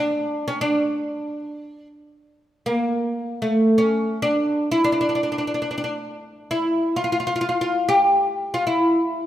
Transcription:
Already playing: D4
0.48 C#4
0.61 D4
2.66 A#3
3.42 A3
3.78 C#4
4.22 D4
4.72 E4
4.84 D4
4.92 D4
5.01 D4
5.09 D4
5.15 D4
5.23 D4
5.32 D4
5.38 D4
5.47 D4
5.54 D4
5.62 D4
5.71 D4
5.78 D4
5.84 D4
6.51 E4
6.96 F4
7.04 F4
7.12 F4
7.20 F4
7.27 F4
7.36 F4
7.41 F4
7.49 F4
7.61 F4
7.89 G4
8.54 F4
8.67 E4

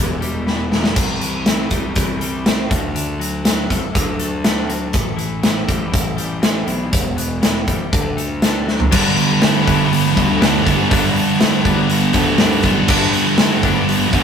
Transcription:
Already playing: E1 E2 B2 E3 G3
0.21 G3, closed hi-hat
0.47 B3, snare
0.72 E3, snare
0.84 snare
0.96 C2 C3, kick, closed hi-hat, crash
1.21 E3, closed hi-hat
1.46 E3, snare, closed hi-hat
1.71 C2 G3, kick, closed hi-hat
1.96 C2 E3, kick, closed hi-hat
2.21 G3, closed hi-hat
2.46 C4, snare, closed hi-hat
2.70 D2 D3, kick, closed hi-hat
2.94 D3, closed hi-hat
3.19 F#3, closed hi-hat
3.45 F#3, snare, closed hi-hat
3.70 C2 A3, kick, closed hi-hat
3.94 D2 F#3, kick, closed hi-hat
4.19 A3, closed hi-hat
4.44 D4, snare, closed hi-hat
4.68 F#3, closed hi-hat
4.93 A1 A2, kick, closed hi-hat
5.17 E3, closed hi-hat
5.42 E3, snare, closed hi-hat
5.67 A1 G3, kick, closed hi-hat
5.92 A1 E3, kick, closed hi-hat
6.17 G3, closed hi-hat
6.42 C4, snare, closed hi-hat
6.66 B1 E3, closed hi-hat
6.92 E1 E2, kick, closed hi-hat
7.16 B2, closed hi-hat
7.42 E3, snare, closed hi-hat
7.68 A1 G3, kick, closed hi-hat
7.92 D2 D3, kick, closed hi-hat
8.17 A3, closed hi-hat
8.42 D4, snare, closed hi-hat
8.67 F#3, snare
8.80 floor tom
8.91 G1 G2 D3 G3 B3 D4, kick, crash
9.16 G3 B3, open hi-hat
9.42 G3 B3, snare, open hi-hat
9.66 G1 G3 B3 D4, kick, open hi-hat
9.92 G3 B3, open hi-hat
10.05 snare
10.16 D2 G2 D3 G3 B3, kick, open hi-hat
10.41 G2 D3 G3 B3 D4, snare, open hi-hat
10.65 G1 D3 G3 B3 D4, kick, open hi-hat
10.69 G2
10.90 G1 G2 D3 G3 B3 D4, kick, open hi-hat
11.15 G3 B3, open hi-hat
11.39 G3 B3, snare, open hi-hat
11.65 G1 G3 B3 D4, kick, open hi-hat
11.90 G3 B3, open hi-hat
12.13 D2 G2 D3 G3 B3, kick, open hi-hat
12.38 G2 D3 G3 B3 D4, snare, open hi-hat
12.63 B1 D3 G3 B3 D4, kick, open hi-hat
12.67 G2
12.88 G1 G2 D3 G3 B3 D4, kick, crash
13.13 G3 B3, open hi-hat
13.38 G3 B3, snare, open hi-hat
13.63 G1 G3 B3 D4, kick, open hi-hat
13.89 G3 B3, open hi-hat
14.12 D2 G2 D3 G3 B3, kick, open hi-hat

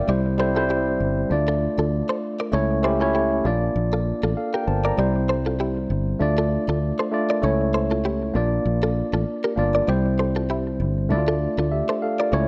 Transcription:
Already playing: A#3 D4 F4 D5 F5 G5
0.07 C2 G3 C4 E4 G4 C5 D5
0.38 G3 C4 E4 A4 C5
0.55 G3 C4 E4 F4 A4 C5
0.70 E4 G4
1.00 G1
1.29 D2 A3 D4 F4 D5
1.48 F4 A4
1.78 D2 F4 A4
2.09 A4 C5
2.40 A#4 D5
2.52 C#2 A3 C#4 E4 A4 C#5
2.82 A3 C#4 E4 G4 A4 C5
2.99 A3 C#4 E4 F4 A4 C#5
3.15 E4 G4
3.44 A#1 A#3 D4 F4 D5
3.76 A#1
3.93 F4 A4
4.23 A1 F4 A4
4.37 A4 F5
4.54 G4 A#4 G5
4.67 G1 C5 A5
4.84 A#4 D5 A#5
4.97 C2 G3 C4 E4 G4 C5 D5
5.29 A4 C5
5.46 F4 A4
5.60 E4 G4
5.90 G1
6.19 D2 A3 D4 F4 D5
6.38 F4 A4
6.68 D2 F4 A4
6.99 A4 C5
7.11 A3 D4 F4 D5
7.30 A#4 D5
7.42 C#2 A3 C#4 E4 A4 C#5
7.74 A4 C5
7.91 F4 A4
8.05 E4 G4
8.34 A#1 A#3 D4 F4 D5
8.65 A#1
8.83 F4 A4
9.13 A1 F4 A4
9.44 G4 A#4
9.56 G1 A#3 D4 F4 D5
9.75 A#4 D5
9.87 C2 G3 C4 E4 G4 C5 D5
10.19 A4 C5
10.36 F4 A4
10.50 E4 G4
10.80 G1
11.09 D2 A3 D4 E4 D5
11.17 F4
11.28 F4 A4
11.58 D2 F4 A4
11.72 G4 E5
11.89 A4 C5
12.02 A4 F5
12.19 F4 A#4 D5
12.32 C#2 A3 C#4 E4 A4 C#5

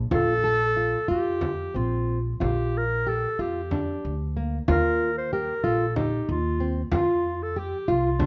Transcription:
0.11 A#1 F4 A4, frame drum
0.44 A4
0.77 F4
1.08 F2 F4 G4
1.41 frame drum
1.74 A#1 C4 F4
2.40 A#1 F4 G4, frame drum
2.77 A#4
3.07 G4 A4
3.39 F2 F4 G4
3.71 D4, frame drum
4.05 D2
4.37 A#3
4.68 D#2 F4 A#4, frame drum
5.18 C5
5.33 G4 A#4
5.64 A#1 F4 A4
5.96 D#4 G4, frame drum
6.29 D#2 F4
6.60 C4
6.92 F2 F4, frame drum
7.43 A4
7.56 G4
7.88 C2 F4
8.19 D4, frame drum

